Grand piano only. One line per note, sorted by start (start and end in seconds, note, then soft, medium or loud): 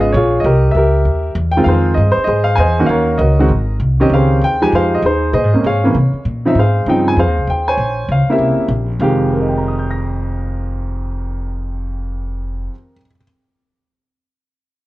0.00 0.13 C#3 medium
0.00 0.13 G#3 medium
0.00 0.13 B3 medium
0.00 0.13 F4 medium
0.00 0.16 G#4 medium
0.00 0.43 B4 medium
0.00 0.13 D#5 medium
0.12 0.45 C#5 medium
0.17 0.44 F4 medium
0.17 0.45 G#4 medium
0.40 0.71 D#5 medium
0.46 0.76 G4 medium
0.46 0.75 A#4 medium
0.71 1.31 E5 medium
0.76 1.34 G4 medium
0.76 1.33 A#4 medium
1.51 1.65 G5 medium
1.56 1.96 D#3 medium
1.56 1.96 G#3 medium
1.56 1.96 C4 medium
1.56 1.96 F4 medium
1.64 1.97 F5 medium
1.68 2.25 G#4 medium
1.68 2.10 C5 medium
1.94 2.16 D#5 medium
2.11 2.26 C5 medium
2.24 2.85 G#4 medium
2.24 2.46 D#5 medium
2.28 2.58 C5 medium
2.44 2.57 F5 medium
2.55 2.87 D#5 medium
2.55 2.85 G#5 loud
2.60 2.88 C5 medium
2.79 3.18 D#3 medium
2.79 3.18 A#3 medium
2.79 3.18 C#4 medium
2.79 3.19 F#4 medium
2.86 3.19 A#4 medium
2.86 3.47 C#5 medium
2.86 3.16 F5 medium
3.18 3.39 F#4 medium
3.18 3.77 A#4 medium
3.18 3.76 D#5 medium
3.39 3.50 D#3 medium
3.39 3.49 G#3 medium
3.39 3.50 C4 medium
3.39 3.50 F#4 medium
4.00 4.40 D#3 medium
4.00 4.40 C4 medium
4.00 4.40 C#4 medium
4.00 4.40 G4 medium
4.00 4.11 D#5 medium
4.14 4.70 G#4 medium
4.14 4.70 C5 medium
4.14 4.44 F5 medium
4.44 4.63 G5 loud
4.61 5.01 F3 medium
4.61 5.01 G#3 medium
4.61 5.01 D#4 medium
4.61 5.01 G4 medium
4.61 4.73 G#5 medium
4.75 5.04 G#4 medium
4.75 5.04 C5 medium
4.75 4.94 F5 medium
4.94 5.04 D#5 medium
5.05 5.33 D#4 medium
5.05 5.32 G#4 medium
5.05 5.33 C5 medium
5.33 5.65 G#4 medium
5.33 5.91 C5 medium
5.33 5.65 D#5 medium
5.54 5.63 C3 medium
5.54 5.63 G#3 soft
5.54 5.64 A#3 medium
5.54 5.64 C#4 medium
5.66 5.94 G#4 medium
5.66 6.23 C#5 medium
5.66 5.94 F5 medium
5.84 5.94 C3 medium
5.84 5.94 E3 medium
5.84 5.94 A#3 medium
5.84 5.94 C#4 medium
6.45 6.55 C#3 medium
6.45 6.55 F3 medium
6.45 6.56 C4 medium
6.45 6.56 D#4 medium
6.45 6.57 E5 medium
6.59 7.15 G#4 medium
6.59 7.15 C5 medium
6.59 6.86 F5 medium
6.88 7.18 C#3 medium
6.88 7.18 F3 medium
6.88 7.18 C4 medium
6.88 7.18 D#4 medium
6.88 7.06 G5 medium
7.08 7.17 G#5 medium
7.19 7.75 G#4 medium
7.19 7.67 C5 medium
7.19 7.47 F5 medium
7.50 7.69 G5 medium
7.68 8.25 C5 medium
7.68 8.25 C#5 medium
7.68 8.11 G#5 medium
8.12 8.29 F5 medium
8.29 8.69 C#3 medium
8.29 8.69 A#3 medium
8.29 8.69 C4 medium
8.29 8.69 E4 medium
8.29 8.88 G4 medium
8.29 8.88 A#4 soft
8.29 8.70 E5 medium
9.00 12.71 F2 medium
9.00 12.71 D#3 medium
9.00 12.72 G#3 medium
9.00 12.74 G4 medium
9.00 12.68 F5 medium
9.33 12.93 A#4 soft
9.41 12.97 D#5 soft
9.49 13.01 G5 soft
9.57 13.05 A#5 soft
9.68 13.10 D#6 soft
9.79 13.16 G6 soft
9.91 13.22 A#6 soft